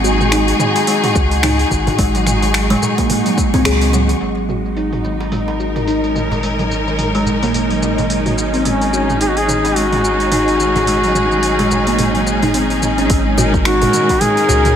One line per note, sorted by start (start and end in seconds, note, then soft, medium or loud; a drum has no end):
0.00 0.53 G#1 medium
0.00 4.20 G#3 medium
0.00 4.21 D#4 medium
0.00 4.22 F#4 medium
0.00 4.21 G#4 medium
0.00 4.22 F#5 medium
0.00 4.21 C#6 medium
0.04 0.20 F#4 medium
0.04 shaker medium
0.20 mid tom medium
0.20 shaker soft
0.32 0.59 D#4 medium
0.32 finger snap medium
0.32 open hi-hat medium
0.32 shaker soft
0.48 open hi-hat soft
0.59 0.75 D#3 medium
0.59 mid tom medium
0.59 darbuka ka soft
0.59 shaker medium
0.76 open hi-hat soft
0.76 darbuka tek medium
0.76 shaker soft
0.87 1.14 G#3 medium
0.87 open hi-hat medium
0.87 shaker soft
1.04 mid tom medium
1.04 open hi-hat soft
1.04 darbuka tek medium
1.15 1.64 C#2 medium
1.15 1.31 F#4 medium
1.15 kick loud
1.15 shaker medium
1.31 open hi-hat soft
1.31 darbuka ka soft
1.31 shaker soft
1.43 1.70 D#4 medium
1.43 finger snap loud
1.43 mid tom medium
1.43 open hi-hat medium
1.43 shaker soft
1.59 open hi-hat soft
1.59 shaker soft
1.71 1.90 G#1 medium
1.71 1.86 D#3 medium
1.71 kick medium
1.71 darbuka tek soft
1.71 shaker medium
1.87 mid tom medium
1.87 open hi-hat soft
1.87 darbuka dum medium
1.87 shaker soft
1.99 2.75 G#1 medium
1.99 2.13 G#3 medium
1.99 kick loud
1.99 open hi-hat medium
1.99 shaker soft
2.15 2.41 F#3 medium
2.15 open hi-hat soft
2.15 darbuka tek soft
2.15 shaker soft
2.27 finger snap soft
2.27 mid tom medium
2.27 shaker medium
2.42 2.54 D#3 medium
2.42 open hi-hat soft
2.42 darbuka tek soft
2.42 shaker soft
2.54 finger snap loud
2.54 open hi-hat medium
2.54 shaker soft
2.70 2.97 G#3 loud
2.70 mid tom medium
2.70 open hi-hat soft
2.82 darbuka ka soft
2.82 darbuka dum medium
2.82 shaker medium
2.98 3.24 A#3 loud
2.98 kick medium
2.98 open hi-hat soft
2.98 darbuka tek medium
2.98 shaker soft
3.10 mid tom medium
3.10 open hi-hat medium
3.10 darbuka dum medium
3.10 shaker soft
3.26 3.37 F#3 medium
3.26 open hi-hat soft
3.26 darbuka ka soft
3.26 shaker soft
3.37 3.52 G#3 medium
3.37 kick loud
3.37 darbuka ka medium
3.37 shaker medium
3.54 3.64 C4 loud
3.54 kick medium
3.54 mid tom medium
3.54 open hi-hat soft
3.54 darbuka dum medium
3.54 shaker soft
3.65 4.14 C#2 loud
3.65 3.81 G#4 loud
3.65 finger snap loud
3.65 open hi-hat medium
3.65 shaker soft
3.81 3.93 C4 medium
3.81 open hi-hat soft
3.81 shaker soft
3.93 4.09 F#3 loud
3.93 mid tom medium
3.93 darbuka ka soft
3.93 shaker medium
4.09 4.20 D#3 medium
4.09 open hi-hat soft
4.09 shaker soft
4.21 13.08 G#1 medium
4.21 14.76 G#3 medium
4.21 4.48 G#3 medium
4.21 13.11 D#4 medium
4.21 13.11 D#5 medium
4.21 open hi-hat medium
4.21 shaker soft
4.37 open hi-hat soft
4.37 shaker soft
4.49 4.64 F#4 medium
4.49 mid tom medium
4.49 shaker medium
4.66 14.76 D#4 medium
4.66 shaker soft
4.76 5.03 D#4 medium
4.76 open hi-hat medium
4.76 shaker soft
4.93 mid tom medium
4.93 open hi-hat soft
5.04 5.20 D#3 medium
5.04 darbuka ka soft
5.04 shaker medium
5.20 open hi-hat soft
5.20 darbuka tek medium
5.20 shaker soft
5.30 5.59 G#3 medium
5.30 8.98 A#4 medium
5.30 mid tom medium
5.30 open hi-hat medium
5.30 shaker soft
5.48 open hi-hat soft
5.48 darbuka tek medium
5.60 5.75 F#4 medium
5.60 shaker medium
5.76 mid tom medium
5.76 open hi-hat soft
5.76 darbuka ka soft
5.76 shaker soft
5.88 6.14 D#4 medium
5.88 open hi-hat medium
5.88 shaker soft
5.92 14.76 C#4 medium
6.04 open hi-hat soft
6.04 shaker soft
6.15 6.31 D#3 medium
6.15 mid tom medium
6.15 darbuka tek soft
6.15 shaker medium
6.31 open hi-hat soft
6.31 darbuka dum medium
6.31 shaker soft
6.43 6.58 G#3 medium
6.43 open hi-hat medium
6.43 shaker soft
6.59 6.86 F#3 medium
6.59 mid tom medium
6.59 open hi-hat soft
6.59 darbuka tek soft
6.59 shaker soft
6.71 shaker medium
6.87 6.98 D#3 medium
6.87 darbuka tek soft
6.87 shaker soft
6.99 mid tom medium
6.99 open hi-hat medium
6.99 shaker soft
7.15 7.41 G#3 loud
7.15 open hi-hat soft
7.26 darbuka ka soft
7.26 darbuka dum medium
7.26 shaker medium
7.43 7.69 A#3 medium
7.43 mid tom medium
7.43 open hi-hat soft
7.43 darbuka tek medium
7.43 shaker soft
7.54 open hi-hat medium
7.54 darbuka dum medium
7.54 shaker soft
7.70 7.97 F#3 medium
7.70 open hi-hat soft
7.70 darbuka ka soft
7.82 mid tom medium
7.82 darbuka ka medium
7.82 shaker medium
7.98 8.09 D#3 medium
7.98 open hi-hat soft
7.98 darbuka dum medium
7.98 shaker soft
8.10 open hi-hat medium
8.10 shaker soft
8.26 8.52 F#4 medium
8.26 mid tom medium
8.26 open hi-hat soft
8.26 darbuka ka soft
8.26 shaker soft
8.38 darbuka ka soft
8.38 shaker medium
8.54 8.64 C4 medium
8.54 open hi-hat soft
8.54 shaker soft
8.65 8.92 G#3 medium
8.65 9.17 C#4 medium
8.65 mid tom medium
8.65 open hi-hat medium
8.65 shaker soft
8.81 14.76 G#4 medium
8.81 open hi-hat soft
8.81 shaker soft
8.93 9.09 F#4 medium
8.93 shaker medium
9.09 mid tom medium
9.09 shaker soft
9.21 9.48 D#4 medium
9.21 9.31 G#4 loud
9.21 open hi-hat medium
9.21 shaker soft
9.29 9.39 F#4 medium
9.37 9.78 G#4 loud
9.37 open hi-hat soft
9.48 9.64 D#3 medium
9.48 mid tom medium
9.48 darbuka ka soft
9.48 shaker medium
9.65 open hi-hat soft
9.65 darbuka tek medium
9.65 shaker soft
9.76 10.03 G#3 medium
9.76 12.54 F#4 medium
9.76 open hi-hat medium
9.76 shaker soft
9.93 mid tom medium
9.93 open hi-hat soft
9.93 darbuka tek medium
10.04 10.20 F#4 medium
10.04 shaker medium
10.20 open hi-hat soft
10.20 darbuka ka soft
10.20 shaker soft
10.32 10.59 D#4 medium
10.32 mid tom medium
10.32 open hi-hat medium
10.32 shaker soft
10.48 open hi-hat soft
10.48 shaker soft
10.60 10.75 D#3 medium
10.60 darbuka tek soft
10.60 shaker medium
10.76 mid tom medium
10.76 open hi-hat soft
10.76 darbuka dum medium
10.76 shaker soft
10.87 11.02 G#3 medium
10.87 open hi-hat medium
10.87 shaker soft
11.04 11.30 F#3 medium
11.04 open hi-hat soft
11.04 darbuka tek soft
11.04 shaker soft
11.15 mid tom medium
11.15 shaker medium
11.31 11.43 D#3 medium
11.31 darbuka tek soft
11.31 shaker soft
11.43 open hi-hat medium
11.43 shaker soft
11.59 11.86 G#3 medium
11.59 mid tom medium
11.59 open hi-hat soft
11.71 darbuka ka soft
11.71 darbuka dum medium
11.71 shaker medium
11.87 12.13 A#3 loud
11.87 open hi-hat soft
11.87 darbuka tek medium
11.87 shaker soft
11.99 mid tom medium
11.99 open hi-hat medium
11.99 darbuka dum medium
11.99 shaker soft
12.15 12.25 F#3 medium
12.15 open hi-hat soft
12.15 darbuka ka soft
12.26 darbuka ka soft
12.26 shaker medium
12.42 12.49 D#4 medium
12.42 mid tom medium
12.42 open hi-hat soft
12.42 darbuka dum medium
12.42 shaker soft
12.54 12.69 C4 medium
12.54 open hi-hat medium
12.54 shaker soft
12.70 12.81 C4 medium
12.70 open hi-hat soft
12.70 darbuka ka soft
12.70 shaker soft
12.82 mid tom medium
12.82 darbuka ka soft
12.82 shaker medium
12.98 13.09 C#4 medium
12.98 open hi-hat soft
12.98 shaker soft
13.10 13.87 G#1 loud
13.10 13.37 G#3 medium
13.10 kick loud
13.10 open hi-hat medium
13.10 shaker soft
13.38 13.53 F#4 medium
13.38 14.76 A#4 medium
13.38 mid tom medium
13.38 darbuka dum medium
13.38 shaker medium
13.54 kick loud
13.54 shaker soft
13.65 13.92 D#4 medium
13.65 14.23 F#4 loud
13.65 finger snap loud
13.65 open hi-hat medium
13.65 shaker soft
13.82 mid tom medium
13.82 open hi-hat soft
13.82 darbuka tek soft
13.82 darbuka dum medium
13.82 shaker soft
13.93 14.09 D#3 medium
13.93 darbuka ka medium
13.93 shaker medium
14.09 kick medium
14.09 open hi-hat soft
14.09 darbuka tek medium
14.09 shaker soft
14.21 14.48 G#3 medium
14.21 14.76 G#4 loud
14.21 mid tom medium
14.21 open hi-hat medium
14.21 shaker soft
14.37 open hi-hat soft
14.37 shaker soft
14.49 14.76 C#2 medium
14.49 14.64 F#4 medium
14.49 darbuka dum medium
14.49 shaker medium
14.65 mid tom medium
14.65 open hi-hat soft
14.65 darbuka ka medium
14.65 shaker soft